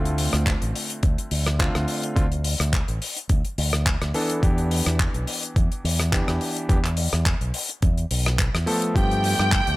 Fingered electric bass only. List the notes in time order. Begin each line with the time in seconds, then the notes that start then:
Already playing: D2
0.33 D2
0.62 A1
1.03 D2
1.31 D2
1.75 D2
2.16 D2
2.60 D2
2.88 A1
3.30 D2
3.58 D2
4.01 D2
4.43 E2
4.86 E2
5.14 B1
5.56 E2
5.84 E2
6.28 E2
6.69 E2
7.13 E2
7.41 B1
7.83 E2
8.11 B1
8.54 E2
8.96 G2
9.39 G2
9.68 D2